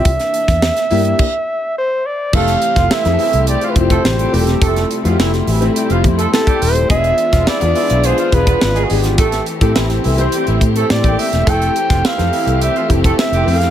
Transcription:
Already playing: C3 E5
0.05 C2 E3 A#3 D4, kick, closed hi-hat
0.20 snare, closed hi-hat
0.34 closed hi-hat
0.48 E2, kick, snare, closed hi-hat
0.62 snare
0.77 snare, closed hi-hat
0.90 G2 A#3 D4 E4 G4, open hi-hat
1.05 closed hi-hat
1.19 kick, crash
1.78 C5
2.06 D5
2.33 F1 C3 E3 G3 A3 C4 G4 A4 F5, kick, crash
2.48 snare, closed hi-hat
2.62 closed hi-hat
2.76 F1 F3 F4, kick, snare, closed hi-hat
2.91 E3 E4 E5, snare
3.04 F2 A3 C4 E4 G#4, snare, closed hi-hat
3.12 A4
3.19 E3 E4, open hi-hat
3.33 C2, closed hi-hat
3.47 G3 G4 D5, closed hi-hat
3.61 F3 F4, closed hi-hat
3.70 B4
3.75 F1 A3 C4 E4 F4 C5, kick, closed hi-hat
3.83 G4
3.90 A3 A4, kick, closed hi-hat
4.04 A1, snare
4.19 G3 G4, closed hi-hat
4.32 E1 A3 C4 E4 G4, open hi-hat
4.40 A4
4.47 snare, closed hi-hat
4.62 F1 A3 E4 A4, kick, closed hi-hat
4.76 snare, closed hi-hat
4.91 closed hi-hat
5.04 F2 F3 A3 C4 E4 F4 F#4, closed hi-hat
5.11 G4
5.19 F1 E3 E4, snare
5.34 snare, closed hi-hat
5.47 A1 E3 E4, open hi-hat
5.60 A3 C4 E4 G4, closed hi-hat
5.76 G3 G4, closed hi-hat
5.90 F1 F3 F4, closed hi-hat
6.04 F2, kick, closed hi-hat
6.18 A3 A4, closed hi-hat
6.32 A3 C4 E4 G4 A4, snare
6.46 G3 G4, kick, closed hi-hat
6.62 D#1 C5, open hi-hat
6.75 closed hi-hat
6.88 E1 E3 G#3 B3 D4 F4 G#4 E5, kick, closed hi-hat
7.04 closed hi-hat
7.18 closed hi-hat
7.32 E1 F3 F4, kick, snare, closed hi-hat
7.46 E3 E4 D5, muted fingered electric bass stroke, snare
7.60 E2 B3 D4 F4 G#4, closed hi-hat
7.75 E3 E4, open hi-hat
7.90 B1, closed hi-hat
8.04 G#3 G#4 C5, closed hi-hat
8.17 F3 F4, closed hi-hat
8.32 E1 B3 D4 F4 G#4 B4, kick, closed hi-hat
8.47 B3 B4, kick, closed hi-hat
8.61 G#1, snare
8.75 G#3 G#4, closed hi-hat
8.84 F#4
8.90 G#1 B3 D4 F4 G4 G#4, open hi-hat
9.04 snare, closed hi-hat
9.18 A1 A3 C4 G4 A4, kick, closed hi-hat
9.32 snare, closed hi-hat
9.46 closed hi-hat
9.60 A2 G3 C4 E4 G4 A4, kick, closed hi-hat
9.75 A1 E3 E4, snare
9.90 snare, closed hi-hat
10.04 C2 E3 E4, open hi-hat
10.17 C4 E4 G4 C5, closed hi-hat
10.32 G3 G4, closed hi-hat
10.47 A1 E3 E4, closed hi-hat
10.61 A2, kick, closed hi-hat
10.76 A3 A4, closed hi-hat
10.90 A2 A#3 E4 G4 A4 D5, snare
10.96 C4
11.03 A1 G3 G4, kick, closed hi-hat
11.19 E5, open hi-hat
11.33 E1, snare, closed hi-hat
11.46 F1 E3 A3 C4 E4 G4 A4 G5, kick, closed hi-hat
11.62 closed hi-hat
11.76 closed hi-hat
11.89 F1 F3 F4, kick, snare, closed hi-hat
12.03 E3 E4 F5, muted fingered electric bass stroke, snare
12.17 F2 E3 C4 G4 A4, snare, closed hi-hat
12.32 E3 E4, open hi-hat
12.47 C2, closed hi-hat
12.61 G3 G4 E5, closed hi-hat
12.76 F3 F4, closed hi-hat
12.89 F1 C4 E4 G4 A4, kick, closed hi-hat
13.04 A3 A4, kick, closed hi-hat
13.19 E5, snare
13.32 F1 G3 G4, closed hi-hat
13.46 F2 C4 E4 G4 G#4 F5, open hi-hat
13.54 A4
13.61 snare, closed hi-hat

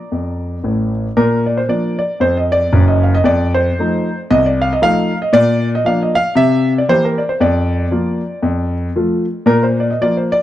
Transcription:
Already playing: D5 A#5 D6
0.12 F2
0.64 A1 A2
1.17 A#2 A#4
1.46 D5
1.57 C5
1.69 F3 A#3 D4 D5
1.99 D5
2.20 F2 C5
2.37 D#5
2.52 D5
2.72 F#1 F#2
2.88 D#5
3.03 F5
3.15 D#5
3.24 F2 D5
3.54 C5
3.79 F3 A3 D#4
4.30 C2 D#5
4.46 D5
4.62 F5
4.73 D#5
4.82 F3 A3 D#4 F5
5.22 D#5
5.33 A#2 D5
5.75 D#5
5.85 F3 A#3 D4 F5
6.03 D#5
6.15 F5
6.35 C3 E5
6.78 D5
6.88 E3 A#3 G4 C5
7.05 A#4
7.18 D5
7.29 C5
7.40 F2 D5
7.91 F3 A#3 F4
8.43 F2
8.96 F3 A3 F4
9.46 A#2 A#4
9.63 C5
9.80 D5
9.90 D#5
10.01 F3 A#3 F4 D5
10.17 C5
10.32 D5

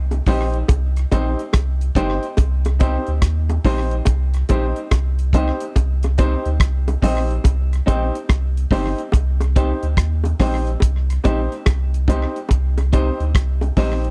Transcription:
Already playing: C2
0.11 muted clean electric guitar stroke, closed hi-hat, high bongo
0.26 A#1 C4 D#4 G4 C5, kick, open hi-hat, low bongo
0.54 closed hi-hat
0.68 C2, kick, closed hi-hat, high bongo
0.96 closed hi-hat
1.11 A#1 C4 D#4 G4 C5, kick, closed hi-hat, high bongo
1.39 closed hi-hat
1.53 C2, kick, cross-stick, closed hi-hat, high bongo
1.81 closed hi-hat
1.95 G1 C4 D#4 G4 C5, kick, closed hi-hat, low bongo
2.23 closed hi-hat
2.37 C2, kick, closed hi-hat, high bongo
2.65 closed hi-hat, high bongo
2.79 C4 D#4 G4 C5, kick, closed hi-hat
3.07 D2, closed hi-hat
3.22 D#2, kick, cross-stick, closed hi-hat
3.49 muted clean electric guitar stroke, closed hi-hat, high bongo
3.65 A#1 C4 D#4 G4 C5, kick, open hi-hat, low bongo
3.91 closed hi-hat
4.05 C2, kick, closed hi-hat, high bongo
4.34 closed hi-hat
4.49 A#1 C4 D#4 G4 C5, kick, closed hi-hat, high bongo
4.76 closed hi-hat
4.91 C2, kick, cross-stick, closed hi-hat, high bongo
5.19 closed hi-hat
5.33 C4 D#4 G4 C5, kick, closed hi-hat, low bongo
5.60 closed hi-hat
5.76 C2, kick, closed hi-hat, high bongo
6.03 closed hi-hat, high bongo
6.18 C4 D#4 G4 C5, kick, closed hi-hat
6.45 D2, closed hi-hat
6.60 C2, kick, cross-stick, closed hi-hat
6.88 muted clean electric guitar stroke, closed hi-hat, high bongo
7.02 A#1 C4 D#4 G4 C5, kick, open hi-hat, low bongo
7.31 closed hi-hat
7.44 C2, kick, closed hi-hat, high bongo
7.73 closed hi-hat
7.86 A#1 C4 D#4 G4 C5, kick, closed hi-hat, high bongo
8.15 closed hi-hat
8.29 C2, kick, cross-stick, closed hi-hat, high bongo
8.57 closed hi-hat
8.71 G1 C4 D#4 G4 C5, kick, open hi-hat, low bongo
8.98 closed hi-hat
9.12 C2, kick, closed hi-hat, high bongo
9.40 closed hi-hat, high bongo
9.56 C4 D#4 G4 C5, kick, closed hi-hat
9.83 D2, closed hi-hat
9.97 D#2, kick, cross-stick, closed hi-hat
10.24 muted clean electric guitar stroke, closed hi-hat, high bongo
10.40 A#1 C4 D#4 G4 C5, kick, cross-stick, open hi-hat, low bongo
10.67 closed hi-hat
10.80 C2, kick, closed hi-hat, high bongo
11.10 closed hi-hat
11.24 A#1 C4 D#4 G4 C5, kick, closed hi-hat, high bongo
11.52 closed hi-hat
11.66 C2, kick, cross-stick, closed hi-hat, high bongo
11.94 closed hi-hat
12.08 C4 D#4 G4 C5, kick, closed hi-hat, low bongo
12.36 closed hi-hat
12.49 C2, kick, closed hi-hat, high bongo
12.78 closed hi-hat, high bongo
12.93 C4 D#4 G4 C5, kick, closed hi-hat
13.20 D2, closed hi-hat
13.35 C2, kick, cross-stick, closed hi-hat
13.61 muted clean electric guitar stroke, closed hi-hat, high bongo
13.77 A#1 C4 D#4 G4 C5, kick, open hi-hat, low bongo
14.04 closed hi-hat

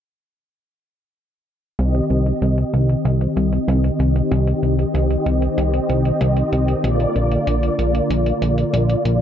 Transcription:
1.79 C2 D#3 C4 G4 D#5, closed hi-hat
1.95 closed hi-hat
2.10 C2, closed hi-hat
2.26 closed hi-hat
2.42 C2, closed hi-hat
2.58 closed hi-hat
2.74 C2, closed hi-hat
2.89 closed hi-hat
3.05 C2, closed hi-hat
3.21 closed hi-hat
3.37 C2, closed hi-hat
3.53 closed hi-hat
3.68 C2, closed hi-hat
3.84 closed hi-hat
4.00 C2, closed hi-hat
4.16 closed hi-hat
4.31 C2, closed hi-hat
4.47 closed hi-hat
4.63 C2, closed hi-hat
4.79 closed hi-hat
4.94 C2, closed hi-hat
5.11 closed hi-hat
5.26 C2, closed hi-hat
5.42 closed hi-hat
5.58 C2, closed hi-hat
5.74 closed hi-hat
5.89 C2, closed hi-hat
6.05 closed hi-hat
6.21 C2, closed hi-hat
6.37 closed hi-hat
6.52 C2, closed hi-hat
6.68 closed hi-hat
6.84 A#1 D3 A#3 F4 D5, closed hi-hat
7.00 closed hi-hat
7.16 A#1, closed hi-hat
7.32 closed hi-hat
7.47 A#1, closed hi-hat
7.63 closed hi-hat
7.79 A#1, closed hi-hat
7.95 closed hi-hat
8.10 A#1, closed hi-hat
8.26 closed hi-hat
8.42 A#1, closed hi-hat
8.58 closed hi-hat
8.73 A#1, closed hi-hat
8.90 closed hi-hat
9.05 A#1, closed hi-hat

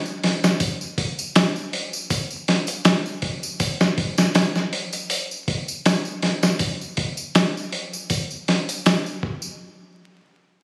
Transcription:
0.06 tambourine
0.23 snare, open hi-hat
0.44 snare, tambourine
0.60 kick, open hi-hat, tambourine
0.81 tambourine
0.98 kick, open hi-hat
1.19 tambourine
1.36 snare, open hi-hat, tambourine
1.56 tambourine
1.73 open hi-hat
1.93 tambourine
2.10 kick, open hi-hat, tambourine
2.31 tambourine
2.48 snare, open hi-hat
2.67 closed hi-hat, tambourine
2.85 snare, open hi-hat, tambourine
3.06 tambourine
3.22 kick, open hi-hat
3.43 tambourine
3.60 kick, open hi-hat, tambourine
3.80 snare, tambourine
3.98 kick, open hi-hat
4.18 snare, tambourine
4.35 snare, open hi-hat, tambourine
4.55 snare, tambourine
4.73 open hi-hat
4.93 closed hi-hat, tambourine
5.10 open hi-hat, tambourine
5.31 tambourine
5.48 kick, open hi-hat
5.68 tambourine
5.86 snare, open hi-hat, tambourine
6.05 tambourine
6.22 snare, open hi-hat
6.43 snare, tambourine
6.59 kick, open hi-hat, tambourine
6.81 tambourine
6.97 kick, open hi-hat
7.17 tambourine
7.35 snare, open hi-hat, tambourine
7.57 tambourine
7.72 open hi-hat
7.93 tambourine
8.10 kick, open hi-hat, tambourine
8.31 tambourine
8.48 snare, open hi-hat
8.69 closed hi-hat, tambourine
8.86 snare, open hi-hat, tambourine
9.06 tambourine
9.23 kick
9.42 tambourine

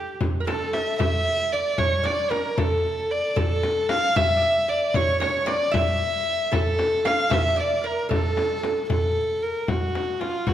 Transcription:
Already playing: G4
0.08 darbuka ka
0.21 frame drum, darbuka dum
0.40 A#4
0.46 A4, darbuka tek, frame drum
0.73 E5, darbuka tek, frame drum
0.99 E5, frame drum, darbuka dum
1.52 D5, darbuka ka
1.78 C#5, frame drum, darbuka dum
2.04 D5, darbuka tek, frame drum
2.30 A#4, darbuka tek, frame drum
2.58 A4, frame drum, darbuka dum
2.85 darbuka ka
3.11 D5, darbuka ka
3.26 darbuka ka
3.36 A4, frame drum, darbuka dum
3.63 darbuka tek, frame drum
3.89 F5, darbuka tek, frame drum
4.16 E5, frame drum, darbuka dum
4.36 D5
4.42 E5
4.68 D5, darbuka ka
4.82 darbuka ka
4.94 C#5, frame drum, darbuka dum
5.20 C#5, darbuka tek, frame drum
5.46 D5, darbuka tek, frame drum
5.71 E5, frame drum, darbuka dum
6.27 darbuka ka
6.40 darbuka ka
6.52 A4, frame drum, darbuka dum
6.79 darbuka tek, frame drum
7.05 F5, darbuka tek, frame drum
7.30 E5, frame drum, darbuka dum
7.56 D5
7.84 A#4, darbuka ka
7.98 darbuka ka
8.09 A4, frame drum, darbuka dum
8.37 darbuka tek, frame drum
8.63 darbuka tek, frame drum
8.90 A4, frame drum, darbuka dum
9.42 A#4
9.57 darbuka ka
9.67 F#4, frame drum, darbuka dum
9.95 darbuka tek, frame drum
10.20 F4, darbuka tek, frame drum
10.47 F#4, frame drum, darbuka dum

